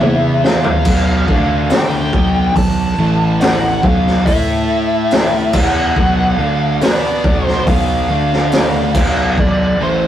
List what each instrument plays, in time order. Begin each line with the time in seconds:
Already playing: lead electric guitar E5
0.01 fingered electric bass E2, distorted electric guitar E3 B3 E4, high tom
0.44 lead electric guitar F5, snare
0.64 floor tom
0.85 fingered electric bass B1, distorted electric guitar B2 F#3 B3, kick, splash, crash
1.28 fingered electric bass D2, distorted electric guitar D3 A3 D4, kick
1.70 lead electric guitar G5, snare, open hi-hat
2.13 fingered electric bass B1, distorted electric guitar B2 F#3 B3, kick
2.55 fingered electric bass B1, distorted electric guitar B2 F#3, lead electric guitar A5, kick, open hi-hat
2.98 fingered electric bass A1, distorted electric guitar A2 E3 A3
3.41 lead electric guitar F#5, snare, open hi-hat
3.83 fingered electric bass B1, distorted electric guitar B2 F#3 B3, lead electric guitar F5, kick
4.07 snare
4.25 fingered electric bass A2, distorted electric guitar A3 E4 A4, lead electric guitar E5, kick, open hi-hat
5.11 snare, open hi-hat
5.53 fingered electric bass E2, distorted electric guitar E3 B3 E4, lead electric guitar F#5, kick, crash
5.96 fingered electric bass B1, distorted electric guitar B2 F#3 B3, kick
6.37 fingered electric bass D2, distorted electric guitar D3 A3 D4, lead electric guitar F5
6.81 fingered electric bass B2, distorted electric guitar B3 F#4 B4, lead electric guitar D5, snare, open hi-hat
7.24 fingered electric bass B1, distorted electric guitar B2 F#3 B3, kick
7.46 lead electric guitar C5, snare
7.67 fingered electric bass B1, distorted electric guitar B2 F#3 B3, lead electric guitar F5, kick, open hi-hat
8.09 fingered electric bass D2, distorted electric guitar D3 A3 D4
8.33 snare
8.52 snare, open hi-hat
8.95 fingered electric bass B1, distorted electric guitar B2 F#3 B3, kick, crash
9.38 fingered electric bass B1, distorted electric guitar B2 F#3, lead electric guitar D5, kick
9.80 fingered electric bass A1, distorted electric guitar A2 E3 A3, lead electric guitar C5